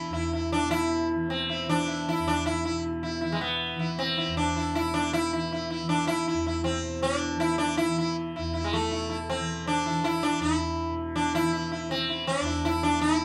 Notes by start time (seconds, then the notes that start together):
Already playing: B2 E3 E4
0.09 E2 E4
0.33 E4
0.52 D4
0.62 B2
0.71 E4
1.14 E3
1.30 C4
1.49 E4
1.66 E3 D4
1.87 E4
2.09 E4
2.18 E2
2.28 D4
2.46 E4
2.65 E4
2.70 B2
3.03 E4
3.21 E3 E4
3.32 G#3
3.41 B3
3.76 E3 E4
3.99 C4
4.17 E4
4.27 E2
4.37 D4
4.56 E4
4.75 E4
4.80 B2
4.94 D4
5.13 E4
5.32 E3 E4
5.52 E4
5.70 E4
5.82 E3
5.89 D4
6.07 E4
6.28 E4
6.33 E2
6.47 E4
6.64 C4
6.84 B2
7.02 D4
7.35 E3
7.40 E4
7.58 D4
7.77 E4
7.87 E3
7.98 E4
8.36 E2 E4
8.54 E4
8.64 G#3
8.73 A3
8.88 B2 E4
9.09 E4
9.29 C4
9.39 E3
9.67 D4
9.86 E3 E4
10.04 E4
10.23 D4
10.39 E2 E4
10.91 B2
11.16 D4
11.35 E4
11.40 E3
11.53 E4
11.71 E4
11.90 E3 C4
12.09 E4
12.27 D4
12.41 E2
12.45 E4
12.65 E4
12.83 D4
12.90 B2
13.01 E4